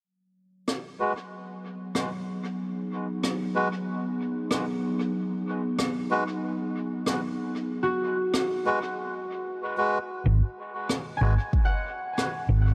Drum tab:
SD |--r---r-|--r---r-|--r---r-|--r-----|
BD |--------|--------|--------|--------|

SD |--r---r-|
BD |----o---|